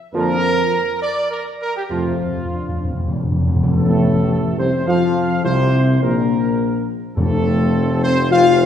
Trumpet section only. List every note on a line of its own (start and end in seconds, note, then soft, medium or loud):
0.15 0.97 A#4 loud
1.02 1.29 D5 loud
1.31 1.44 A#4 loud
1.61 1.74 A#4 loud
1.76 1.83 G4 loud
1.91 3.38 F4 medium
3.72 4.55 A4 medium
4.59 4.86 C5 medium
4.87 5.41 F5 loud
5.45 5.98 C5 loud
6.02 6.88 A#4 medium
7.17 7.99 A4 loud
8.03 8.29 C5 loud
8.32 8.66 F5 loud